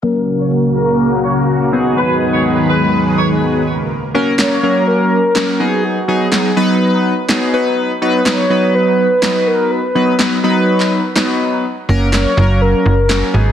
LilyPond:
<<
  \new Staff \with { instrumentName = "Horn section" } { \time 4/4 \key fis \major \tempo 4 = 124 ais'8 r16 cis''16 r8 ais'8. r16 cis''16 r4 r16 | b'8 r16 cis''16 r8 b'8. r16 cis''16 r4 r16 | r1 | r1 |
r1 | r1 | r1 | }
  \new Staff \with { instrumentName = "Soft synth lead" } { \time 4/4 \key fis \major r1 | r1 | r4 cis''4 ais'4. gis'8 | fis'4 r2. |
r4 cis''4 b'4. ais'8 | b'4 r2. | r4 cis''4 ais'4. gis'8 | }
  \new Staff \with { instrumentName = "Analog polysynth" } { \time 4/4 \key fis \major <fis ais cis' ais'>2.~ <fis ais cis' ais'>8 <fis b dis' gis'>8~ | <fis b dis' gis'>2.~ <fis b dis' gis'>8 r8 | r8 <fis ais cis' ais'>8 <fis ais cis' ais'>8 <fis ais cis' ais'>4 r8 <fis ais cis' ais'>8 <fis b dis' gis'>8~ | <fis b dis' gis'>8 <fis b dis' gis'>8 <fis b dis' gis'>8 <fis b dis' b'>4 r8 <fis b dis' gis'>8 <fis b dis' b'>8~ |
<fis b dis' b'>8 <fis b dis' b'>8 <fis b dis' b'>8 <fis b dis' b'>4 r8 <fis b dis' b'>4 | r8 <fis b dis' b'>8 <fis b dis' b'>8 <fis b dis' b'>4 r8 <fis b dis' b'>4 | r8 <fis ais cis' ais'>8 <fis ais cis' ais'>8 <fis ais cis' ais'>4 r8 <fis ais cis' ais'>8 <fis b dis' gis'>8 | }
  \new Staff \with { instrumentName = "Analog synth pad" } { \time 4/4 \key fis \major << { <cis ais ais'>2.~ <cis ais ais'>8 <dis gis b'>8~ | <dis gis b'>2.~ <dis gis b'>8 r8 | r1 | r1 |
r1 | r1 | r1 | } \\ { fis'1~ | fis'1 | r1 | r1 |
r1 | r1 | r1 | } >> }
  \new Staff \with { instrumentName = "FM bass" } { \clef bass \time 4/4 \key fis \major r1 | r1 | r1 | r1 |
r1 | r1 | r8 fis,,4 fis,,4 fis,,4 gis,,8 | }
  \new DrumStaff \with { instrumentName = "Drums" } \drummode { \time 4/4 r4 r4 r4 r4 | r4 r4 r4 r4 | r4 <hc sn>4 r4 <hc sn>4 | r4 <hc sn>4 r4 <hc sn>4 |
r4 <hc sn>4 r4 <hc sn>4 | r4 <hc sn>4 r16 hc8. <hc sn>4 | r4 <hc sn>4 r4 <hc sn>4 | }
>>